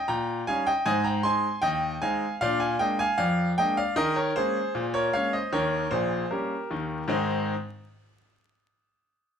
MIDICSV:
0, 0, Header, 1, 2, 480
1, 0, Start_track
1, 0, Key_signature, -4, "major"
1, 0, Tempo, 778210
1, 535, Time_signature, 2, 2, 24, 8
1, 5796, End_track
2, 0, Start_track
2, 0, Title_t, "Grand piano"
2, 0, Program_c, 0, 0
2, 50, Note_on_c, 0, 82, 109
2, 52, Note_on_c, 0, 46, 90
2, 57, Note_on_c, 0, 79, 88
2, 244, Note_off_c, 0, 82, 0
2, 257, Note_off_c, 0, 46, 0
2, 279, Note_off_c, 0, 79, 0
2, 292, Note_on_c, 0, 80, 115
2, 295, Note_on_c, 0, 55, 63
2, 296, Note_on_c, 0, 61, 65
2, 298, Note_on_c, 0, 77, 88
2, 299, Note_on_c, 0, 63, 66
2, 408, Note_off_c, 0, 77, 0
2, 411, Note_on_c, 0, 79, 117
2, 414, Note_off_c, 0, 80, 0
2, 415, Note_on_c, 0, 75, 83
2, 427, Note_off_c, 0, 55, 0
2, 427, Note_off_c, 0, 61, 0
2, 430, Note_off_c, 0, 63, 0
2, 522, Note_off_c, 0, 75, 0
2, 527, Note_on_c, 0, 80, 127
2, 529, Note_on_c, 0, 44, 114
2, 531, Note_on_c, 0, 75, 101
2, 533, Note_off_c, 0, 79, 0
2, 540, Note_on_c, 0, 60, 73
2, 644, Note_off_c, 0, 75, 0
2, 644, Note_on_c, 0, 82, 104
2, 651, Note_off_c, 0, 80, 0
2, 652, Note_on_c, 0, 79, 82
2, 670, Note_off_c, 0, 60, 0
2, 735, Note_off_c, 0, 44, 0
2, 761, Note_on_c, 0, 84, 120
2, 765, Note_off_c, 0, 79, 0
2, 766, Note_on_c, 0, 56, 62
2, 766, Note_on_c, 0, 60, 61
2, 769, Note_off_c, 0, 82, 0
2, 770, Note_on_c, 0, 63, 70
2, 770, Note_on_c, 0, 80, 93
2, 900, Note_off_c, 0, 56, 0
2, 900, Note_off_c, 0, 60, 0
2, 903, Note_off_c, 0, 63, 0
2, 995, Note_off_c, 0, 80, 0
2, 995, Note_off_c, 0, 84, 0
2, 997, Note_on_c, 0, 79, 127
2, 1001, Note_on_c, 0, 39, 97
2, 1004, Note_on_c, 0, 75, 100
2, 1196, Note_off_c, 0, 79, 0
2, 1210, Note_off_c, 0, 39, 0
2, 1232, Note_off_c, 0, 75, 0
2, 1244, Note_on_c, 0, 80, 116
2, 1247, Note_on_c, 0, 56, 70
2, 1249, Note_on_c, 0, 60, 68
2, 1250, Note_on_c, 0, 63, 78
2, 1250, Note_on_c, 0, 77, 82
2, 1380, Note_off_c, 0, 56, 0
2, 1382, Note_off_c, 0, 60, 0
2, 1383, Note_off_c, 0, 63, 0
2, 1440, Note_off_c, 0, 80, 0
2, 1474, Note_off_c, 0, 77, 0
2, 1487, Note_on_c, 0, 77, 127
2, 1491, Note_on_c, 0, 46, 108
2, 1495, Note_on_c, 0, 74, 109
2, 1503, Note_on_c, 0, 62, 78
2, 1598, Note_off_c, 0, 77, 0
2, 1603, Note_on_c, 0, 80, 104
2, 1605, Note_off_c, 0, 74, 0
2, 1607, Note_on_c, 0, 77, 80
2, 1632, Note_off_c, 0, 62, 0
2, 1695, Note_off_c, 0, 46, 0
2, 1721, Note_off_c, 0, 77, 0
2, 1723, Note_on_c, 0, 79, 118
2, 1724, Note_on_c, 0, 56, 66
2, 1727, Note_off_c, 0, 80, 0
2, 1728, Note_on_c, 0, 58, 70
2, 1731, Note_on_c, 0, 62, 69
2, 1732, Note_on_c, 0, 75, 87
2, 1843, Note_off_c, 0, 75, 0
2, 1845, Note_on_c, 0, 80, 127
2, 1847, Note_off_c, 0, 79, 0
2, 1853, Note_on_c, 0, 77, 94
2, 1858, Note_off_c, 0, 56, 0
2, 1861, Note_off_c, 0, 58, 0
2, 1862, Note_off_c, 0, 62, 0
2, 1950, Note_off_c, 0, 77, 0
2, 1959, Note_on_c, 0, 77, 123
2, 1962, Note_on_c, 0, 41, 101
2, 1967, Note_on_c, 0, 74, 88
2, 1968, Note_off_c, 0, 80, 0
2, 2156, Note_off_c, 0, 77, 0
2, 2169, Note_off_c, 0, 41, 0
2, 2191, Note_off_c, 0, 74, 0
2, 2207, Note_on_c, 0, 79, 127
2, 2211, Note_on_c, 0, 56, 67
2, 2212, Note_on_c, 0, 58, 66
2, 2215, Note_on_c, 0, 62, 76
2, 2215, Note_on_c, 0, 75, 93
2, 2324, Note_off_c, 0, 75, 0
2, 2328, Note_off_c, 0, 79, 0
2, 2328, Note_on_c, 0, 77, 114
2, 2334, Note_on_c, 0, 74, 90
2, 2342, Note_off_c, 0, 56, 0
2, 2344, Note_off_c, 0, 58, 0
2, 2345, Note_off_c, 0, 62, 0
2, 2443, Note_on_c, 0, 51, 114
2, 2444, Note_off_c, 0, 74, 0
2, 2444, Note_on_c, 0, 75, 127
2, 2449, Note_off_c, 0, 77, 0
2, 2450, Note_on_c, 0, 70, 101
2, 2456, Note_on_c, 0, 68, 67
2, 2562, Note_off_c, 0, 70, 0
2, 2565, Note_on_c, 0, 73, 94
2, 2567, Note_off_c, 0, 75, 0
2, 2572, Note_on_c, 0, 70, 77
2, 2586, Note_off_c, 0, 68, 0
2, 2650, Note_off_c, 0, 51, 0
2, 2682, Note_off_c, 0, 70, 0
2, 2687, Note_off_c, 0, 73, 0
2, 2688, Note_on_c, 0, 72, 114
2, 2691, Note_on_c, 0, 56, 66
2, 2691, Note_on_c, 0, 58, 68
2, 2693, Note_on_c, 0, 61, 64
2, 2695, Note_on_c, 0, 68, 90
2, 2822, Note_off_c, 0, 58, 0
2, 2823, Note_off_c, 0, 56, 0
2, 2824, Note_off_c, 0, 61, 0
2, 2928, Note_on_c, 0, 46, 94
2, 2976, Note_off_c, 0, 72, 0
2, 3027, Note_off_c, 0, 68, 0
2, 3046, Note_on_c, 0, 73, 106
2, 3052, Note_on_c, 0, 70, 76
2, 3133, Note_off_c, 0, 46, 0
2, 3162, Note_off_c, 0, 70, 0
2, 3165, Note_off_c, 0, 73, 0
2, 3167, Note_on_c, 0, 77, 111
2, 3169, Note_on_c, 0, 56, 61
2, 3169, Note_on_c, 0, 58, 65
2, 3174, Note_on_c, 0, 73, 94
2, 3175, Note_on_c, 0, 61, 69
2, 3284, Note_off_c, 0, 73, 0
2, 3288, Note_off_c, 0, 77, 0
2, 3288, Note_on_c, 0, 75, 93
2, 3294, Note_on_c, 0, 72, 74
2, 3301, Note_off_c, 0, 56, 0
2, 3302, Note_off_c, 0, 58, 0
2, 3306, Note_off_c, 0, 61, 0
2, 3404, Note_off_c, 0, 72, 0
2, 3408, Note_on_c, 0, 51, 96
2, 3408, Note_on_c, 0, 73, 108
2, 3410, Note_off_c, 0, 75, 0
2, 3410, Note_on_c, 0, 39, 94
2, 3415, Note_on_c, 0, 70, 85
2, 3602, Note_off_c, 0, 51, 0
2, 3603, Note_off_c, 0, 39, 0
2, 3637, Note_off_c, 0, 70, 0
2, 3639, Note_off_c, 0, 73, 0
2, 3644, Note_on_c, 0, 72, 102
2, 3648, Note_on_c, 0, 34, 84
2, 3650, Note_on_c, 0, 46, 88
2, 3652, Note_on_c, 0, 68, 72
2, 3843, Note_off_c, 0, 34, 0
2, 3844, Note_off_c, 0, 46, 0
2, 3876, Note_off_c, 0, 68, 0
2, 3877, Note_off_c, 0, 72, 0
2, 3890, Note_on_c, 0, 70, 80
2, 3892, Note_on_c, 0, 55, 52
2, 3892, Note_on_c, 0, 58, 56
2, 3892, Note_on_c, 0, 61, 57
2, 3899, Note_on_c, 0, 67, 63
2, 4026, Note_off_c, 0, 55, 0
2, 4026, Note_off_c, 0, 58, 0
2, 4026, Note_off_c, 0, 61, 0
2, 4136, Note_on_c, 0, 51, 80
2, 4137, Note_on_c, 0, 39, 82
2, 4330, Note_off_c, 0, 39, 0
2, 4330, Note_off_c, 0, 51, 0
2, 4352, Note_off_c, 0, 70, 0
2, 4356, Note_off_c, 0, 67, 0
2, 4365, Note_on_c, 0, 44, 106
2, 4370, Note_on_c, 0, 51, 105
2, 4372, Note_on_c, 0, 60, 100
2, 4375, Note_on_c, 0, 68, 74
2, 4376, Note_on_c, 0, 63, 98
2, 4640, Note_off_c, 0, 44, 0
2, 4643, Note_off_c, 0, 51, 0
2, 4643, Note_off_c, 0, 60, 0
2, 4645, Note_off_c, 0, 68, 0
2, 4646, Note_off_c, 0, 63, 0
2, 5796, End_track
0, 0, End_of_file